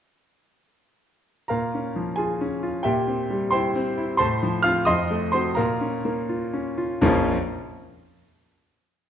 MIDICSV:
0, 0, Header, 1, 2, 480
1, 0, Start_track
1, 0, Key_signature, -5, "minor"
1, 0, Tempo, 450789
1, 1601, Time_signature, 6, 3, 24, 8
1, 5435, Tempo, 476190
1, 7355, Tempo, 461894
1, 9524, End_track
2, 0, Start_track
2, 0, Title_t, "Grand piano"
2, 0, Program_c, 0, 0
2, 1577, Note_on_c, 0, 82, 69
2, 1590, Note_on_c, 0, 70, 51
2, 1592, Note_on_c, 0, 77, 54
2, 1603, Note_on_c, 0, 46, 53
2, 1792, Control_c, 0, 64, 127
2, 1854, Note_on_c, 0, 61, 44
2, 2087, Note_on_c, 0, 53, 45
2, 2234, Note_off_c, 0, 61, 0
2, 2275, Note_off_c, 0, 70, 0
2, 2276, Note_off_c, 0, 77, 0
2, 2298, Note_on_c, 0, 80, 75
2, 2311, Note_on_c, 0, 68, 54
2, 2312, Note_off_c, 0, 82, 0
2, 2326, Note_on_c, 0, 65, 45
2, 2468, Note_off_c, 0, 53, 0
2, 2566, Note_on_c, 0, 61, 55
2, 2705, Note_off_c, 0, 65, 0
2, 2799, Note_on_c, 0, 65, 51
2, 2943, Note_off_c, 0, 61, 0
2, 2987, Note_off_c, 0, 68, 0
2, 2994, Note_off_c, 0, 46, 0
2, 3013, Note_on_c, 0, 79, 77
2, 3023, Note_off_c, 0, 80, 0
2, 3026, Note_on_c, 0, 76, 59
2, 3027, Note_on_c, 0, 67, 56
2, 3037, Note_off_c, 0, 65, 0
2, 3039, Note_on_c, 0, 46, 67
2, 3058, Control_c, 0, 64, 0
2, 3212, Control_c, 0, 64, 127
2, 3273, Note_on_c, 0, 60, 51
2, 3516, Note_on_c, 0, 55, 55
2, 3669, Note_off_c, 0, 60, 0
2, 3720, Note_off_c, 0, 76, 0
2, 3721, Note_off_c, 0, 67, 0
2, 3732, Note_off_c, 0, 79, 0
2, 3733, Note_on_c, 0, 84, 92
2, 3747, Note_on_c, 0, 72, 64
2, 3748, Note_on_c, 0, 79, 63
2, 3757, Note_on_c, 0, 64, 55
2, 3906, Note_off_c, 0, 55, 0
2, 3998, Note_on_c, 0, 60, 67
2, 4139, Note_off_c, 0, 64, 0
2, 4233, Note_on_c, 0, 64, 56
2, 4375, Note_off_c, 0, 60, 0
2, 4419, Note_off_c, 0, 72, 0
2, 4420, Note_off_c, 0, 79, 0
2, 4429, Note_off_c, 0, 84, 0
2, 4431, Note_off_c, 0, 46, 0
2, 4444, Note_on_c, 0, 84, 104
2, 4456, Note_on_c, 0, 81, 75
2, 4458, Note_on_c, 0, 72, 74
2, 4470, Note_off_c, 0, 64, 0
2, 4471, Note_on_c, 0, 45, 67
2, 4489, Control_c, 0, 64, 0
2, 4686, Control_c, 0, 64, 127
2, 4714, Note_on_c, 0, 53, 61
2, 4907, Note_off_c, 0, 81, 0
2, 4908, Note_off_c, 0, 72, 0
2, 4925, Note_on_c, 0, 89, 109
2, 4935, Note_off_c, 0, 84, 0
2, 4938, Note_on_c, 0, 77, 81
2, 4953, Note_on_c, 0, 60, 57
2, 4955, Note_on_c, 0, 65, 62
2, 5097, Note_off_c, 0, 53, 0
2, 5166, Note_on_c, 0, 87, 98
2, 5169, Note_off_c, 0, 77, 0
2, 5170, Note_off_c, 0, 45, 0
2, 5170, Note_off_c, 0, 60, 0
2, 5171, Note_off_c, 0, 65, 0
2, 5179, Note_on_c, 0, 84, 80
2, 5180, Note_off_c, 0, 89, 0
2, 5181, Note_on_c, 0, 75, 71
2, 5191, Note_on_c, 0, 41, 64
2, 5215, Control_c, 0, 64, 0
2, 5399, Control_c, 0, 64, 127
2, 5436, Note_on_c, 0, 57, 60
2, 5631, Note_off_c, 0, 84, 0
2, 5633, Note_off_c, 0, 75, 0
2, 5651, Note_on_c, 0, 84, 86
2, 5658, Note_off_c, 0, 87, 0
2, 5659, Note_on_c, 0, 72, 68
2, 5670, Note_on_c, 0, 60, 47
2, 5675, Note_on_c, 0, 66, 52
2, 5812, Note_off_c, 0, 57, 0
2, 5882, Note_on_c, 0, 82, 75
2, 5884, Note_off_c, 0, 60, 0
2, 5885, Note_off_c, 0, 72, 0
2, 5886, Note_off_c, 0, 41, 0
2, 5886, Note_off_c, 0, 66, 0
2, 5897, Note_off_c, 0, 84, 0
2, 5897, Note_on_c, 0, 77, 57
2, 5898, Note_on_c, 0, 70, 61
2, 5909, Note_on_c, 0, 46, 68
2, 5925, Control_c, 0, 64, 0
2, 6137, Control_c, 0, 64, 127
2, 6146, Note_on_c, 0, 61, 52
2, 6388, Note_on_c, 0, 58, 52
2, 6531, Note_off_c, 0, 61, 0
2, 6632, Note_on_c, 0, 65, 51
2, 6773, Note_off_c, 0, 58, 0
2, 6877, Note_on_c, 0, 61, 54
2, 7019, Note_off_c, 0, 65, 0
2, 7070, Note_off_c, 0, 77, 0
2, 7071, Note_off_c, 0, 70, 0
2, 7103, Note_off_c, 0, 82, 0
2, 7120, Note_on_c, 0, 65, 54
2, 7265, Note_off_c, 0, 61, 0
2, 7317, Note_off_c, 0, 46, 0
2, 7358, Note_off_c, 0, 65, 0
2, 7360, Note_on_c, 0, 34, 92
2, 7364, Note_on_c, 0, 41, 80
2, 7364, Note_on_c, 0, 53, 85
2, 7367, Note_on_c, 0, 58, 89
2, 7368, Note_on_c, 0, 61, 87
2, 7374, Control_c, 0, 64, 0
2, 7374, Note_on_c, 0, 65, 86
2, 7526, Control_c, 0, 64, 127
2, 7628, Note_off_c, 0, 34, 0
2, 7630, Note_off_c, 0, 41, 0
2, 7630, Note_off_c, 0, 53, 0
2, 7632, Note_off_c, 0, 58, 0
2, 7632, Note_off_c, 0, 61, 0
2, 7635, Note_off_c, 0, 65, 0
2, 7713, Control_c, 0, 64, 0
2, 9524, End_track
0, 0, End_of_file